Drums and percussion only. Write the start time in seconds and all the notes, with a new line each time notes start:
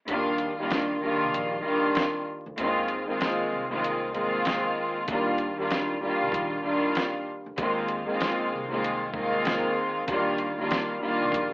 0.08 closed hi-hat
0.38 closed hi-hat
0.71 snare, closed hi-hat
1.34 closed hi-hat
1.95 snare, closed hi-hat
2.58 closed hi-hat
2.88 closed hi-hat
3.21 snare, closed hi-hat
3.84 closed hi-hat
4.15 closed hi-hat
4.45 snare, closed hi-hat
5.08 kick, closed hi-hat
5.38 closed hi-hat
5.71 snare, closed hi-hat
6.32 kick, closed hi-hat
6.95 snare, closed hi-hat
7.58 kick, closed hi-hat
7.88 closed hi-hat
8.21 snare, closed hi-hat
8.84 closed hi-hat
9.14 kick
9.45 snare, closed hi-hat
10.08 kick, closed hi-hat
10.38 closed hi-hat
10.71 snare, closed hi-hat
11.32 kick, closed hi-hat